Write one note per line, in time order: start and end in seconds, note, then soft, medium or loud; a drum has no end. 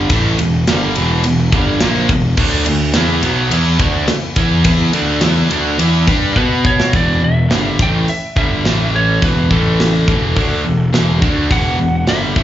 0.10 0.36 A1 medium
0.10 0.38 A2 loud
0.10 0.38 E3 loud
0.10 0.38 A3 loud
0.10 kick loud
0.10 ride loud
0.39 0.65 E1 medium
0.39 0.62 E2 medium
0.39 0.62 B2 medium
0.39 ride medium
0.67 0.94 G1 medium
0.67 0.95 G2 medium
0.67 0.95 D3 medium
0.67 0.95 G3 medium
0.67 snare loud
0.67 ride loud
0.95 1.22 E1 medium
0.95 1.23 E2 loud
0.95 1.23 B2 medium
0.95 1.24 E3 medium
0.95 ride medium
1.24 1.51 E1 medium
1.24 1.47 E2 medium
1.24 1.47 B2 medium
1.24 ride medium
1.52 1.79 G1 medium
1.52 1.80 G2 medium
1.52 1.80 D3 loud
1.52 1.80 G3 medium
1.52 kick medium
1.52 ride medium
1.80 2.08 A#1 medium
1.80 2.08 A#2 medium
1.80 2.09 F3 medium
1.80 2.09 A#3 loud
1.80 snare loud
1.80 ride medium
2.09 2.36 E1 medium
2.09 2.32 E2 medium
2.09 2.32 B2 medium
2.09 kick medium
2.09 ride medium
2.37 2.64 D2 medium
2.37 2.65 D3 loud
2.37 2.65 A3 loud
2.37 2.66 D4 loud
2.37 kick loud
2.37 crash loud
2.66 2.93 D2 medium
2.66 2.89 D3 medium
2.66 2.89 A3 medium
2.66 ride medium
2.94 3.21 E2 loud
2.94 3.22 E3 medium
2.94 3.22 B3 medium
2.94 3.23 E4 medium
2.94 snare loud
2.94 ride medium
3.22 3.49 B1 loud
3.22 3.50 B2 medium
3.22 3.51 F#3 medium
3.22 3.51 B3 loud
3.22 ride medium
3.50 3.77 E2 medium
3.50 3.79 E3 medium
3.50 3.79 B3 loud
3.50 3.80 E4 loud
3.50 ride loud
3.79 4.06 D2 medium
3.79 4.07 D3 medium
3.79 4.08 A3 medium
3.79 4.08 D4 loud
3.79 kick loud
3.79 ride medium
4.08 muted picked electric bass stroke soft
4.08 muted overdriven electric guitar stroke medium
4.08 snare loud
4.08 ride loud
4.36 4.63 E2 loud
4.36 4.63 E3 medium
4.36 4.64 B3 medium
4.36 4.64 E4 loud
4.36 kick medium
4.36 ride medium
4.64 4.92 E2 medium
4.64 4.92 E3 loud
4.64 4.93 B3 medium
4.64 4.93 E4 loud
4.64 kick loud
4.64 ride loud
4.92 5.20 D2 loud
4.92 5.21 D3 medium
4.92 5.21 A3 medium
4.92 5.21 D4 medium
4.92 ride medium
5.21 5.49 E2 medium
5.21 5.50 E3 medium
5.21 5.50 B3 medium
5.21 5.50 E4 loud
5.21 snare loud
5.21 ride loud
5.50 5.77 D2 loud
5.50 5.78 D3 medium
5.50 5.79 A3 medium
5.50 5.79 D4 loud
5.50 ride medium
5.79 6.06 E2 medium
5.79 6.07 E3 loud
5.79 6.06 B3 loud
5.79 6.07 E4 loud
5.79 ride loud
6.07 6.34 G2 medium
6.07 6.36 G3 medium
6.07 6.37 D4 medium
6.07 6.38 G4 medium
6.07 kick medium
6.07 ride medium
6.36 6.89 B2 loud
6.36 6.93 B3 medium
6.36 6.93 F#4 medium
6.36 6.64 B4 medium
6.36 6.93 B4 medium
6.36 kick medium
6.65 6.95 C#5 medium
6.65 kick medium
6.80 snare medium
6.93 7.20 E1 medium
6.93 7.21 E2 medium
6.93 7.21 B2 loud
6.93 7.22 E3 loud
6.93 7.21 D5 medium
6.93 kick loud
6.93 open hi-hat soft
7.21 7.48 E1 medium
7.21 7.45 E2 medium
7.21 7.45 B2 medium
7.21 7.82 E5 medium
7.50 7.77 G1 medium
7.50 7.78 G2 medium
7.50 7.78 D3 medium
7.50 7.79 G3 medium
7.50 snare loud
7.50 open hi-hat soft
7.79 8.06 A1 medium
7.79 8.07 A2 medium
7.79 8.07 E3 medium
7.79 8.07 A3 medium
7.79 8.07 G5 medium
7.79 kick loud
8.07 8.37 E5 loud
8.07 muted overdriven electric guitar stroke medium
8.07 muted picked electric bass stroke soft
8.07 open hi-hat soft
8.36 8.63 G1 medium
8.36 8.64 G2 medium
8.36 8.64 D3 medium
8.36 8.64 G3 medium
8.36 8.90 E5 medium
8.36 kick loud
8.65 9.18 A1 medium
8.65 9.21 A2 medium
8.65 9.22 E3 medium
8.65 9.22 A3 medium
8.65 snare loud
8.65 open hi-hat soft
8.96 9.24 C#5 loud
9.22 9.49 E1 medium
9.22 9.50 E2 medium
9.22 9.50 B2 loud
9.22 9.50 E3 loud
9.22 9.52 B4 medium
9.22 kick loud
9.22 open hi-hat medium
9.51 10.04 A1 medium
9.51 10.07 A2 medium
9.51 10.07 E3 medium
9.51 10.07 A3 medium
9.51 11.18 A4 medium
9.51 kick medium
9.80 snare loud
9.80 open hi-hat soft
10.08 10.34 E1 loud
10.08 10.35 E2 medium
10.08 10.35 B2 medium
10.08 10.36 E3 loud
10.08 kick loud
10.37 10.63 D2 medium
10.37 10.64 D3 medium
10.37 10.64 A3 medium
10.37 10.64 D4 loud
10.37 kick loud
10.37 open hi-hat soft
10.65 10.91 E1 medium
10.65 10.88 E2 medium
10.65 10.88 B2 medium
10.93 11.19 E1 loud
10.93 11.20 E2 medium
10.93 11.21 B2 medium
10.93 11.21 E3 medium
10.93 snare medium
10.93 open hi-hat soft
11.21 11.48 D2 loud
11.21 11.49 D3 medium
11.21 11.49 A3 medium
11.21 11.49 D4 loud
11.21 kick loud
11.50 11.77 E1 medium
11.50 11.77 E2 medium
11.50 11.78 B2 loud
11.50 11.78 E3 loud
11.50 12.10 F#5 medium
11.50 kick loud
11.50 open hi-hat soft
11.78 12.06 E1 medium
11.78 12.01 E2 medium
11.78 12.02 B2 medium
12.07 12.34 G1 medium
12.07 12.35 G2 medium
12.07 12.35 D3 medium
12.07 12.35 G3 medium
12.07 12.43 E5 medium
12.07 snare loud
12.07 open hi-hat soft
12.35 12.43 A1 loud
12.35 12.43 A2 medium
12.35 12.43 E3 medium
12.35 12.43 A3 medium
12.35 kick medium